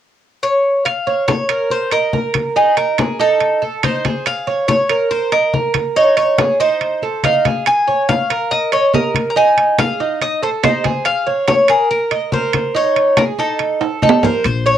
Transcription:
0.43 C#5
0.85 F5, high conga, high timbale
1.07 C#5, high conga
1.28 C#5, high conga, high timbale
1.49 A#4, high conga, high timbale
1.70 C5, high conga
1.92 A#4 D#5, high conga, high timbale
2.13 A#4, high conga
2.34 high conga, high timbale
2.56 D#4 G#4, high conga
2.77 A#4, high conga, high timbale
2.98 G#4, high conga, high timbale
3.19 D#4 A4, high conga
3.40 high conga, high timbale
3.62 A4, high conga
3.83 D#4 C5, high conga, high timbale
4.05 G#4, high conga, high timbale
4.26 F5, high conga, high timbale
4.47 C#5, high conga
4.68 C#5, high conga, high timbale
4.89 A#4, high conga, high timbale
5.11 C5, high conga
5.32 A#4 D#5, high conga, high timbale
5.53 A#4, high conga
5.74 high conga, high timbale
5.96 D#4 C#5, high conga
6.17 C#5, high conga, high timbale
6.38 G#4, high conga, high timbale
6.60 D#4 C5, high conga
6.81 high conga, high timbale
7.02 A4, high conga
7.24 D#4 F5, high conga, high timbale
7.45 G#4, high conga, high timbale
7.66 G#5, high conga, high timbale
7.87 C#5, high conga
8.09 F5, high conga, high timbale
8.30 A#4, high conga, high timbale
8.51 D#5, high conga
8.72 C#5 D#5, high conga, high timbale
8.93 A#4 D#5, high conga, low timbale
9.14 high conga, high timbale
9.30 A#5
9.36 D#4 G#5, high conga
9.57 high conga, high timbale
9.79 G#4 F5, high conga, high timbale
10.00 D#4, high conga
10.21 D#5, high conga, high timbale
10.43 A4 C5, high conga
10.63 D#4 C5, high conga, high timbale, low timbale
10.84 G#4, high conga, high timbale
11.05 F5, high conga, high timbale
11.27 C#5, high conga
11.48 C#5, high conga, high timbale
11.68 G#4 A#4, high conga, high timbale
11.91 A#4, high conga
12.11 D#5, high conga, high timbale
12.32 A#4 C5, high conga
12.53 high conga, high timbale
12.75 D#4 C#5, high conga
12.96 high conga, high timbale
13.17 G#4 A#4, high conga, high timbale
13.38 D#4 A4, high conga
13.59 high conga, high timbale
13.81 A4, high conga, high timbale
14.02 D#4 A4, high conga
14.09 low timbale
14.23 A#4 C5, low conga, low timbale
14.44 A#1 C5, high conga, high timbale
14.66 C#5, high conga

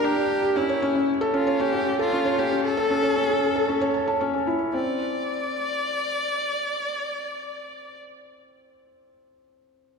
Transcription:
Already playing: D4 G4 A#4
0.03 D4 G4
0.17 D4
0.43 G4
0.56 C#4 E4
0.69 C#5
0.82 C#4
0.95 C#4
1.21 A4
1.34 C#4 F4
1.47 C#5
1.60 C#4 G4
1.73 C#4
1.99 F4 A4
2.13 C#4
2.25 C#5
2.38 C#4 G4
2.51 C#4
2.65 A4
2.77 A4
2.90 C#4
3.03 C#5
3.16 C#4
3.29 C#4
3.56 A4
3.68 C#4
3.81 C#5
3.94 A5
4.07 A5
4.21 C#4
4.34 C#4
4.47 E4
4.73 C4 D5

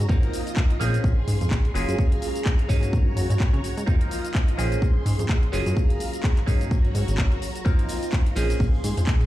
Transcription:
Already playing: A#5
0.01 shaker
0.09 F2 F3 A#3 C4 D#4 F4 A#4 D#5, kick, shaker
0.23 closed hi-hat
0.33 open hi-hat, shaker
0.47 closed hi-hat, shaker
0.57 kick, clap, shaker
0.70 closed hi-hat
0.79 A#1 F3 A#3 C4 C#4 G#4 C6, open hi-hat, shaker
0.94 closed hi-hat, shaker
1.04 A#1, kick, shaker
1.28 G#2, open hi-hat, shaker
1.41 F2, closed hi-hat, shaker
1.51 A#1, kick, clap, shaker
1.65 closed hi-hat
1.74 F#1 F#3 A#3 C#4 F4 G#4 F5 A#5, open hi-hat, shaker
1.88 F#2, closed hi-hat, shaker
1.99 kick, shaker
2.12 closed hi-hat
2.22 open hi-hat, shaker
2.36 closed hi-hat, shaker
2.45 kick, clap, shaker
2.59 closed hi-hat
2.69 G#2 F#3 A#3 C#4 D#4 F#4 G#4 C#5, kick, open hi-hat, shaker
2.83 closed hi-hat, shaker
2.93 G#2, kick, shaker
3.16 F#2, open hi-hat, shaker
3.30 G#2, closed hi-hat, shaker
3.40 kick, clap, shaker
3.53 C#3, closed hi-hat
3.64 G#2, open hi-hat, shaker
3.77 G#2, closed hi-hat, shaker
3.86 F2 F3 A#3 C4 D#4 F4 A#4 D#5, kick, shaker
4.01 closed hi-hat
4.11 open hi-hat, shaker
4.25 closed hi-hat, shaker
4.34 kick, clap, shaker
4.48 closed hi-hat
4.57 A#1 F3 A#3 C4 C#4 G#4 C6, open hi-hat, shaker
4.72 closed hi-hat, shaker
4.82 A#1, kick, shaker
4.96 G#2
5.06 G#2, open hi-hat, shaker
5.19 F2, closed hi-hat, shaker
5.29 A#1, kick, clap, shaker
5.43 closed hi-hat
5.52 F#1 F#3 A#3 C#4 F4 G#4 F5 A#5, open hi-hat, shaker
5.66 F#2, closed hi-hat, shaker
5.77 kick, shaker
5.90 closed hi-hat
6.00 open hi-hat, shaker
6.14 closed hi-hat, shaker
6.23 kick, clap, shaker
6.37 clap, closed hi-hat
6.46 G#2 F#3 A#3 C#4 D#4 F#4 G#4 C#5 A#5, kick, open hi-hat, shaker
6.61 closed hi-hat, shaker
6.71 kick, shaker
6.85 G#2, closed hi-hat
6.95 G#2, open hi-hat, shaker
7.08 G#1, closed hi-hat, shaker
7.18 kick, clap, shaker
7.32 closed hi-hat
7.42 open hi-hat, shaker
7.55 closed hi-hat, shaker
7.65 F2 F3 A#3 C4 D#4 F4 A#4 D#5, kick, tambourine, shaker
7.79 closed hi-hat
7.89 open hi-hat, ride, tambourine, shaker
8.02 closed hi-hat, tambourine, shaker
8.12 kick, clap, tambourine, shaker
8.26 closed hi-hat
8.36 A#1 F3 A#3 C4 C#4 G#4 C6, open hi-hat, ride, tambourine, shaker
8.49 closed hi-hat, tambourine, shaker
8.60 A#1, kick, tambourine, shaker
8.74 G#2, tambourine
8.84 G#2, open hi-hat, ride, tambourine, shaker
8.97 F2, closed hi-hat, tambourine, shaker
9.07 A#1, kick, clap, tambourine, shaker
9.21 closed hi-hat, tambourine

